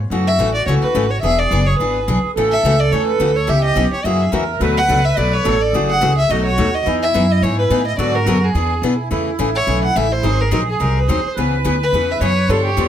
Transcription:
0.10 upright bass F#2, steel-string acoustic guitar C#3 E3 A3 C#4 F#4, accordion F#4
0.27 violin E5
0.38 upright bass A1, steel-string acoustic guitar C#3 E3 A3 C#4 F#4
0.54 violin D5
0.66 upright bass C#2, steel-string acoustic guitar C#3 E3 A3 C#4 F#4, violin C#5
0.82 violin B4, muted upright bass stroke
0.94 upright bass G#1, steel-string acoustic guitar C#3 E3 A3 C#4 F#4
1.10 violin C#5
1.22 upright bass E1, steel-string acoustic guitar E3 B3 D4 G#4, accordion G#4, violin E5
1.39 violin D5
1.51 upright bass F#1, steel-string acoustic guitar E3 B3 D4 G#4
1.66 violin C#5
1.79 upright bass G#1, steel-string acoustic guitar E3 B3 D4 G#4, violin B4
2.08 upright bass B1, steel-string acoustic guitar E3 B3 D4 G#4
2.23 muted upright bass stroke
2.36 upright bass A1, steel-string acoustic guitar C#3 E3 A3 C#4 F#4, accordion A4
2.52 violin E5
2.63 upright bass C#2, steel-string acoustic guitar C#3 E3 A3 C#4 F#4
2.80 violin D5
2.91 upright bass E2, steel-string acoustic guitar C#3 E3 A3 C#4 F#4, violin C#5
3.08 violin B4
3.19 upright bass D2, steel-string acoustic guitar C#3 E3 A3 C#4 F#4
3.36 violin C#5
3.47 upright bass C#2, steel-string acoustic guitar C#3 E3 B3 C#4 G4, accordion G4, violin E5
3.65 violin D#5
3.76 upright bass B1, steel-string acoustic guitar C#3 E3 B3 C#4 G4
3.91 violin C#5, muted upright bass stroke
4.04 upright bass F#2, steel-string acoustic guitar C#3 E3 A#3 C#4 F#4, accordion G#4, violin E5
4.32 upright bass E2, steel-string acoustic guitar C#3 E3 A#3 C#4 F#4, accordion A#4
4.60 upright bass D2, steel-string acoustic guitar B2 F#3 A3 D4 F#4, accordion B4
4.77 violin F#5
4.88 upright bass C#2, steel-string acoustic guitar B2 F#3 A3 D4 F#4
5.05 violin E5
5.17 upright bass B1, steel-string acoustic guitar B2 F#3 A3 D4 F#4, violin D5
5.33 violin C#5
5.44 upright bass A1, steel-string acoustic guitar B2 F#3 A3 D4 F#4, accordion A4
5.62 violin D5
5.73 upright bass F#1, steel-string acoustic guitar C#3 E3 A3 C#4 F#4, accordion G#4
5.90 violin F#5
6.01 upright bass C#2, steel-string acoustic guitar C#3 E3 A3 C#4 F#4
6.18 violin E5
6.29 upright bass B1, steel-string acoustic guitar B2 F#3 A3 D#4 F#4, accordion F#4, violin D#5
6.46 violin C#5
6.58 upright bass D#2, steel-string acoustic guitar B2 F#3 A3 D#4 F#4
6.74 violin D#5
6.85 upright bass E2, steel-string acoustic guitar E3 B3 D#4 G#4, accordion E4
7.02 violin E5
7.14 upright bass F#2, steel-string acoustic guitar E3 B3 D#4 G#4
7.32 violin D#5
7.42 upright bass G#2, steel-string acoustic guitar E3 B3 D#4 G#4, violin C#5
7.59 violin B4
7.70 upright bass A2, steel-string acoustic guitar E3 B3 D#4 G#4
7.87 violin D#5
7.98 upright bass G#2, steel-string acoustic guitar D3 F#3 B3 F#4 G#4, accordion F#4, violin D5
8.15 violin A#4
8.26 upright bass F#2, steel-string acoustic guitar D3 F#3 B3 F#4 G#4
8.44 violin G#4
8.53 upright bass E2, steel-string acoustic guitar E3 B3 D4 G#4, accordion G#4
8.82 upright bass B2, steel-string acoustic guitar E3 B3 D4 G#4, accordion E4
9.10 upright bass E2, steel-string acoustic guitar C#3 E3 A3 C#4 G#4, accordion E4
9.39 upright bass A1, steel-string acoustic guitar C#3 E3 A3 C#4 G#4
9.56 violin C#5
9.67 upright bass B1, steel-string acoustic guitar C#3 E3 A3 C#4 G#4
9.85 violin F#5
9.95 upright bass A1, steel-string acoustic guitar C#3 E3 A3 C#4 G#4, violin E5
10.12 violin C5
10.23 upright bass G#1, steel-string acoustic guitar D#3 F#3 C4 D#4 G#4, accordion G#4
10.41 violin A#4
10.51 upright bass A#1, steel-string acoustic guitar D#3 F#3 C4 D#4 G#4, violin A#4
10.70 violin G#4
10.80 upright bass C2, steel-string acoustic guitar D#3 F#3 C4 D#4 G#4, violin A#4
10.99 violin B4
11.08 upright bass D#2, steel-string acoustic guitar D#3 F#3 C4 D#4 G#4, violin C5
11.24 muted upright bass stroke
11.36 upright bass C#2, steel-string acoustic guitar C#3 E3 B3 C#4 G#4, accordion B4
11.64 upright bass D2, steel-string acoustic guitar C#3 E3 B3 C#4 G#4
11.83 violin B4
11.92 upright bass E2, steel-string acoustic guitar C#3 E3 B3 C#4 G#4
12.11 violin E5
12.20 upright bass F#2, steel-string acoustic guitar C#3 E3 B3 C#4 G#4, violin C#5
12.48 upright bass G2, steel-string acoustic guitar D3 F3 B3 D4 G4, violin A4, accordion C#5
12.66 violin G4
12.77 upright bass E2, steel-string acoustic guitar D3 F3 B3 D4 G4

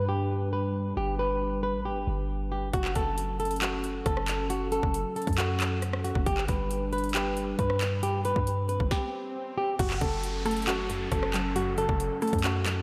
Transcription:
Already playing: 808-style bass G2, analog synth pad G3 D4 B4
0.09 nylon-string guitar G4
0.53 nylon-string guitar B4
0.97 808-style bass G1, nylon-string guitar G4
1.19 nylon-string guitar B4
1.63 nylon-string guitar B4
1.74 808-style bass A1
1.85 nylon-string guitar G4
1.91 808-style bass G1
2.07 808-style bass G1
2.52 nylon-string guitar G4
2.73 808-style bass F#1, analog synth pad F#3 C#4 A4, nylon-string guitar F#4, kick, closed hi-hat
2.85 clap
2.95 808-style bass F#1, nylon-string guitar A4, kick, closed hi-hat
3.18 closed hi-hat
3.40 nylon-string guitar A4, closed hi-hat
3.45 closed hi-hat
3.51 closed hi-hat
3.56 closed hi-hat
3.62 nylon-string guitar F#4, clap, closed hi-hat
3.84 closed hi-hat
4.06 808-style bass F#1, nylon-string guitar A4, kick, cross-stick, closed hi-hat
4.17 cross-stick
4.28 clap, closed hi-hat
4.50 nylon-string guitar F#4, closed hi-hat
4.72 nylon-string guitar A4, closed hi-hat
4.83 808-style bass F#1, kick
4.94 closed hi-hat
5.16 nylon-string guitar A4, closed hi-hat
5.22 closed hi-hat
5.27 808-style bass F#2, kick, closed hi-hat
5.33 closed hi-hat
5.38 nylon-string guitar F#4, clap, closed hi-hat
5.60 clap, closed hi-hat
5.82 cross-stick, closed hi-hat
5.93 cross-stick
6.04 nylon-string guitar F#4, closed hi-hat
6.15 808-style bass F#1, kick
6.26 808-style bass G1, analog synth pad G3 D4 B4, nylon-string guitar G4, kick, closed hi-hat
6.37 clap
6.48 808-style bass G1, nylon-string guitar B4, kick, closed hi-hat
6.71 closed hi-hat
6.93 nylon-string guitar B4, closed hi-hat
6.98 closed hi-hat
7.04 closed hi-hat
7.09 closed hi-hat
7.15 nylon-string guitar G4, clap, closed hi-hat
7.37 closed hi-hat
7.59 808-style bass G2, nylon-string guitar B4, kick, cross-stick, closed hi-hat
7.70 cross-stick
7.81 clap, closed hi-hat
8.03 nylon-string guitar G4, closed hi-hat, swell
8.25 nylon-string guitar B4, closed hi-hat
8.36 808-style bass G2, kick
8.47 closed hi-hat
8.69 nylon-string guitar B4, closed hi-hat
8.80 808-style bass G1, kick
8.91 nylon-string guitar G4, kick, snare
9.58 nylon-string guitar G4
9.79 808-style bass F#1, synth pluck F#2, analog synth pad F#3 C#4 A4, nylon-string guitar F#4, kick, closed hi-hat, downlifter
9.90 clap
10.01 808-style bass F#1, synth pluck C#3, nylon-string guitar A4, kick, closed hi-hat
10.23 closed hi-hat
10.46 synth pluck A3, nylon-string guitar A4, closed hi-hat
10.51 closed hi-hat
10.57 closed hi-hat
10.62 closed hi-hat
10.67 synth pluck C#4, nylon-string guitar F#4, clap, closed hi-hat
10.90 synth pluck F#2, closed hi-hat
11.12 808-style bass F#1, nylon-string guitar A4, kick, cross-stick, closed hi-hat
11.23 cross-stick
11.34 synth pluck F#3, clap, closed hi-hat
11.56 synth pluck F#2, nylon-string guitar F#4, closed hi-hat
11.78 synth pluck C#3, nylon-string guitar A4, closed hi-hat
11.89 808-style bass F#1, kick
12.00 closed hi-hat
12.22 synth pluck A3, nylon-string guitar A4, closed hi-hat
12.28 closed hi-hat
12.33 808-style bass F#2, kick, closed hi-hat
12.39 closed hi-hat
12.44 synth pluck C#4, nylon-string guitar F#4, clap, closed hi-hat
12.66 synth pluck F#2, clap, closed hi-hat

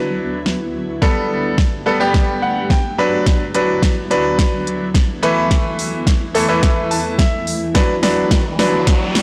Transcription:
Already playing: ambient pad D2 D3 F#3 B3 E4, grand piano F#3 D4 B4
0.46 snare
1.02 ambient pad G2 A3 B3 G4, grand piano G3 B3 A4, kick, snare
1.58 kick, snare
1.86 grand piano G3 B3 A4
2.00 grand piano G3 B3 G4
2.14 kick, snare
2.42 grand piano F#5
2.70 grand piano G5, kick, snare
2.98 ambient pad D2 F#3 E4, grand piano F#3 D4 B4 B5
3.26 kick, snare, closed hi-hat
3.54 grand piano F#3 D4 B4, closed hi-hat
3.82 kick, snare, closed hi-hat
4.10 grand piano F#3 D4 B4, closed hi-hat
4.39 kick, snare, closed hi-hat
4.67 closed hi-hat
4.94 kick, snare, closed hi-hat
5.23 ambient pad E2 E3 A3, grand piano E3 A3 E4 B4, closed hi-hat
5.51 kick, snare, closed hi-hat
5.79 open hi-hat
6.07 kick, snare, closed hi-hat
6.35 grand piano E3 A3 E4 A4, open hi-hat
6.49 grand piano E3 A3 E4 B4
6.63 kick, snare, closed hi-hat
6.91 grand piano A5, open hi-hat
7.19 grand piano E5, kick, snare, closed hi-hat
7.47 open hi-hat
7.75 ambient pad D2 D3 F#3 B3, grand piano F#3 D4 B4, kick, snare, closed hi-hat, riser
8.03 grand piano F#3 D4 B4, snare, open hi-hat
8.31 kick, snare, closed hi-hat
8.59 grand piano F#3 D4 B4, snare, open hi-hat
8.87 kick, snare, closed hi-hat
9.15 snare, open hi-hat

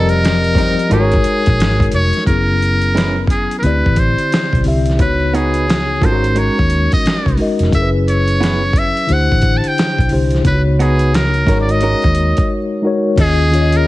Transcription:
Already playing: fingered electric bass F1, tine electric piano F3 C4 G4 A#4 D5, hollow-body jazz guitar G3 C4 D#4 A#4, muted trumpet A4
0.00 tine electric piano D#5
0.09 muted trumpet A#4, closed hi-hat
0.23 muted hollow-body jazz guitar stroke, snare, closed hi-hat
0.44 closed hi-hat
0.55 tine electric piano F3 C4 G4 A#4, hollow-body jazz guitar G3 C4 D#4 A#4, kick, closed hi-hat
0.60 tine electric piano D#5, snare
0.79 closed hi-hat
0.88 fingered electric bass G#1, tine electric piano G#3 D#4 F#4 A#4, hollow-body jazz guitar G#3 C#4 F#4 A#4, closed hi-hat
0.93 muted trumpet G#4, tine electric piano C5
1.00 tine electric piano C#5
1.12 kick, closed hi-hat
1.24 muted fingered electric bass stroke, closed hi-hat
1.46 fingered electric bass A#1, kick, closed hi-hat
1.59 fingered electric bass G#1, snare, closed hi-hat
1.80 kick, closed hi-hat
1.92 fingered electric bass F1, muted trumpet C#5, closed hi-hat
2.13 closed hi-hat
2.17 snare
2.25 fingered electric bass F#1, tine electric piano F#3 C#4 E4, muted trumpet A#4, kick, closed hi-hat
2.29 tine electric piano B3 G#4
2.62 closed hi-hat
2.82 closed hi-hat
2.95 hollow-body jazz guitar G#3 C#4 E4 B4, snare, closed hi-hat
3.27 muted trumpet G#4, kick, closed hi-hat
3.51 closed hi-hat
3.59 tine electric piano D3 C4, muted trumpet A#4, closed hi-hat
3.63 fingered electric bass D2, tine electric piano E4 G4 D5, muted trumpet B4
3.86 fingered electric bass A1, kick
3.96 muted trumpet C5, kick, closed hi-hat
4.19 closed hi-hat
4.32 snare, closed hi-hat
4.53 fingered electric bass B1, kick, closed hi-hat
4.63 fingered electric bass C2, tine electric piano D3 C4 E4 G4, open hi-hat
4.68 tine electric piano E5
4.86 closed hi-hat
4.90 snare
4.97 fingered electric bass C#2, tine electric piano C#3 B3 D#4 F#4, kick, closed hi-hat
5.01 muted trumpet B4, tine electric piano C#5
5.33 hollow-body jazz guitar B3 D#4 F#4 B4, muted trumpet G#4, closed hi-hat
5.54 closed hi-hat
5.67 muted hollow-body jazz guitar stroke, snare, closed hi-hat
6.00 fingered electric bass G#1, tine electric piano G#3 D#4 F#4 A#4, hollow-body jazz guitar G#3 C#4 F#4 A#4, kick, closed hi-hat
6.05 tine electric piano C#4, muted trumpet C5
6.24 closed hi-hat
6.35 hollow-body jazz guitar G#3 C#4 F#4 A#4, muted trumpet C#5, closed hi-hat
6.59 fingered electric bass D#2, kick
6.70 closed hi-hat
6.92 muted trumpet D#5, kick, closed hi-hat
7.05 muted fingered electric bass stroke, snare, closed hi-hat
7.26 fingered electric bass C2, kick, closed hi-hat
7.37 tine electric piano G#3 D#4 F#4 A#4, open hi-hat
7.42 tine electric piano D#5
7.59 fingered electric bass F1, closed hi-hat
7.63 snare
7.70 fingered electric bass F#1, tine electric piano F#3 C#4 E4 G#4, kick, closed hi-hat
7.75 muted trumpet E5
7.82 tine electric piano B4
8.08 muted trumpet C#5, closed hi-hat
8.28 closed hi-hat
8.40 hollow-body jazz guitar B3 E4 G#4 B4, snare, closed hi-hat
8.73 kick, closed hi-hat
8.78 muted trumpet E5
8.97 closed hi-hat
9.07 fingered electric bass D2, tine electric piano D3 D4 E4 G4, closed hi-hat
9.11 tine electric piano C5, muted trumpet F#5
9.32 fingered electric bass A1, kick
9.42 kick, closed hi-hat
9.57 muted trumpet A5
9.64 muted trumpet G5, closed hi-hat
9.78 snare, closed hi-hat
9.98 fingered electric bass B1, kick, closed hi-hat
10.09 fingered electric bass C2, tine electric piano D3 D4 E4 G4, open hi-hat
10.13 tine electric piano C5
10.31 closed hi-hat
10.35 snare
10.42 fingered electric bass C#2, tine electric piano C#3 B3 D#4 F4, kick, closed hi-hat
10.47 muted trumpet B4, tine electric piano C#5
10.53 tine electric piano F#4
10.79 hollow-body jazz guitar B3 D#4 F#4 B4, muted trumpet G#4, closed hi-hat
10.99 closed hi-hat
11.13 muted trumpet A#4, muted hollow-body jazz guitar stroke, snare, closed hi-hat
11.34 closed hi-hat
11.45 fingered electric bass G#1, tine electric piano G#3 D#4 F#4 A#4, hollow-body jazz guitar G#3 C#4 F#4 A#4, kick, closed hi-hat
11.50 tine electric piano C#5, snare
11.61 muted trumpet D5
11.69 muted trumpet D#5, closed hi-hat
11.81 hollow-body jazz guitar G#3 C#4 F#4 A#4, closed hi-hat
12.02 fingered electric bass D#2, kick, closed hi-hat
12.15 closed hi-hat
12.37 kick, closed hi-hat
12.82 tine electric piano G#3 D#4 F#4 A#4
12.87 tine electric piano C#5
13.15 fingered electric bass D#2, tine electric piano D#3 C#4 F4 G#4, kick, closed hi-hat, crash
13.21 muted trumpet G#4
13.50 tine electric piano D#3 C#4 F4 G#4, closed hi-hat
13.55 tine electric piano C#5
13.62 tine electric piano D#5
13.72 closed hi-hat
13.77 muted trumpet A#4

